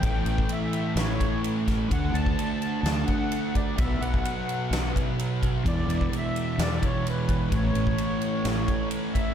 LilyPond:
<<
  \new Staff \with { instrumentName = "Accordion" } { \time 4/4 \key a \mixolydian \tempo 4 = 129 g''4 e''4 cis''4 r4 | fis''8 a''4 a''8 a''8 fis''4 d''8 | e''8 fis''2 r4. | d''4 e''4 d''8 cis''8 b'4 |
cis''2. r8 e''8 | }
  \new Staff \with { instrumentName = "Distorted electric guitar" } { \clef bass \time 4/4 \key a \mixolydian <a, e a>1 | <d a d'>1 | <b, fis b>1 | <e, b, e>1 |
<a, e a>1 | }
  \new Staff \with { instrumentName = "Fingered electric bass" } { \clef bass \time 4/4 \key a \mixolydian a,,8 a,,8 r4 a,,8 r4. | d,8 d,8 r4 d,8 r4. | b,,8 b,,8 r4 b,,8 r4. | e,8 e,8 r4 e,8 r4. |
a,,8 a,,8 r4 a,,8 r4. | }
  \new DrumStaff \with { instrumentName = "Drums" } \drummode { \time 4/4 <bd cymr>8 cymr16 bd16 cymr8 cymr8 <cymr sn>8 <bd cymr>8 cymr8 <bd cymr sn>8 | <bd cymr>8 cymr16 bd16 cymr8 cymr8 <cymr sn>8 <bd cymr>8 cymr8 <bd cymr>8 | <bd cymr>8 cymr16 bd16 cymr8 cymr8 <cymr sn>8 <bd cymr>8 cymr8 <bd cymr>8 | <bd cymr>8 cymr16 bd16 cymr8 cymr8 <cymr sn>8 <bd cymr>8 cymr8 <bd cymr>8 |
<bd cymr>8 cymr16 bd16 cymr8 cymr8 <cymr sn>8 <bd cymr>8 cymr8 <bd cymr>8 | }
>>